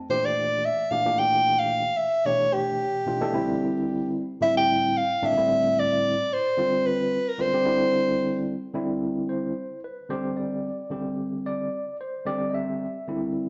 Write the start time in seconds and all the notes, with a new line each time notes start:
0.09 A#2 E3 A3 D4 G4 C5
0.25 D5
0.65 E5
0.91 A#2 E3 A3 D4 G4 F5
1.05 A#2 E3 A3 D4 G4
1.19 G5
1.59 F5
1.97 E5
2.25 B2 E3 A3 D4 G4 C#5
2.53 G4
3.06 B2 E3 A3 D4 F4
3.21 B2 E3 A3 D4 A4
3.33 D3 G3 C4 E4
4.41 A2 D3 G3 C4 E4 E5
4.57 G5
4.97 F5
5.22 A2 D3 G3 C4 D4 E5
5.36 A2 D3 G3 C4 E4
5.79 D5
6.33 C5
6.58 D3 G3 C4 F4
6.86 B4
7.28 A#4
7.38 D3 G3 C4 F4 C5
7.53 D3 G3 C4 G4
7.65 D3 G3 C4 E4
8.73 D3 G3 C4 E4
9.29 C5
9.84 B4
10.09 D3 G3 C4 G4 C5
10.37 D5
10.90 D3 G3 C4 G4
11.46 D5
12.01 C5
12.26 D3 G3 C4 G4 D5
12.49 D#5
12.54 E5
13.08 D3 G3 C4 E4